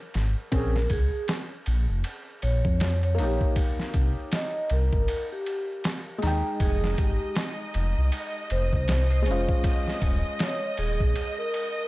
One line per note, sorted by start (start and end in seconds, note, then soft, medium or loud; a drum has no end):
0.00 shaker soft
0.14 0.35 G#1 medium
0.14 snare soft
0.14 ride medium
0.14 shaker medium
0.38 shaker soft
0.52 0.87 A#1 medium
0.52 0.72 C4 medium
0.52 0.73 C#4 medium
0.52 0.88 A#4 medium
0.52 kick loud
0.52 ride medium
0.52 shaker medium
0.56 0.74 G#4 medium
0.75 snare soft
0.75 shaker soft
0.90 1.11 C#2 medium
0.90 1.26 G#4 medium
0.90 kick loud
0.90 ride medium
0.90 shaker medium
1.14 shaker soft
1.28 snare loud
1.28 ride medium
1.28 shaker medium
1.53 shaker soft
1.66 1.87 A#1 medium
1.66 ride medium
1.66 shaker loud
1.90 2.03 F1 medium
1.90 shaker soft
2.04 ride medium
2.04 shaker medium
2.29 shaker soft
2.42 2.63 A#1 medium
2.42 2.97 C#5 medium
2.42 ride medium
2.42 shaker medium
2.65 3.21 F2 loud
2.65 kick medium
2.65 shaker soft
2.80 snare loud
2.80 ride medium
2.80 shaker medium
3.03 3.53 C#5 medium
3.03 ride soft
3.03 shaker soft
3.15 6.17 A#3 medium
3.15 ride medium
3.19 3.39 A#1 medium
3.19 6.19 D#4 medium
3.19 6.21 G4 medium
3.19 shaker medium
3.41 kick loud
3.41 shaker soft
3.56 kick loud
3.56 ride medium
3.56 shaker medium
3.79 snare soft
3.79 shaker soft
3.94 4.14 C2 medium
3.94 kick medium
3.94 ride medium
3.94 shaker medium
4.19 shaker soft
4.32 4.68 D#5 medium
4.32 snare loud
4.32 ride medium
4.32 shaker soft
4.57 shaker soft
4.70 4.91 C2 loud
4.70 5.25 A#4 medium
4.70 ride medium
4.70 shaker medium
4.93 5.07 G1 medium
4.93 kick medium
4.93 shaker soft
5.08 ride medium
5.08 shaker medium
5.31 5.81 G4 medium
5.31 shaker soft
5.46 ride medium
5.46 shaker medium
5.69 shaker soft
5.84 snare loud
5.84 ride medium
5.84 shaker soft
6.07 shaker soft
6.18 9.21 G#3 medium
6.18 shaker medium
6.22 6.43 D#2 medium
6.22 9.23 D#4 medium
6.22 snare soft
6.22 ride medium
6.27 9.25 G5 medium
6.45 shaker soft
6.60 6.95 F1 medium
6.60 6.96 G#4 medium
6.60 11.88 D#5 medium
6.60 kick loud
6.60 ride medium
6.60 shaker soft
6.83 snare medium
6.83 shaker soft
6.98 7.18 G#1 medium
6.98 7.34 G4 medium
6.98 kick loud
6.98 ride medium
6.98 shaker medium
7.21 shaker soft
7.35 snare loud
7.35 ride medium
7.35 shaker soft
7.60 shaker soft
7.74 7.95 F1 loud
7.74 ride medium
7.74 shaker medium
7.97 8.11 C2 medium
7.97 shaker soft
8.12 ride medium
8.12 shaker soft
8.36 shaker soft
8.50 8.71 F1 medium
8.50 9.05 C5 medium
8.50 ride medium
8.50 shaker medium
8.73 9.29 C2 medium
8.73 kick medium
8.73 shaker soft
8.88 snare loud
8.88 ride medium
8.88 shaker soft
9.11 9.60 C5 medium
9.11 ride soft
9.11 shaker soft
9.22 11.88 G#3 medium
9.22 ride medium
9.22 shaker medium
9.26 9.47 F1 medium
9.26 11.88 C#4 medium
9.31 11.88 F4 medium
9.49 kick loud
9.49 shaker soft
9.64 kick loud
9.64 ride medium
9.64 shaker soft
9.87 snare soft
9.87 shaker soft
10.02 10.22 D#1 medium
10.02 kick loud
10.02 ride medium
10.02 shaker medium
10.25 shaker soft
10.39 10.75 C#5 medium
10.39 snare loud
10.39 ride medium
10.39 shaker soft
10.64 shaker soft
10.77 10.98 D#1 medium
10.77 11.32 G#4 medium
10.77 ride medium
10.77 shaker medium
11.00 11.14 A#1 medium
11.00 kick medium
11.00 shaker soft
11.16 ride medium
11.16 shaker soft
11.38 11.87 A#4 medium
11.38 shaker soft
11.54 ride medium
11.54 shaker medium
11.78 shaker soft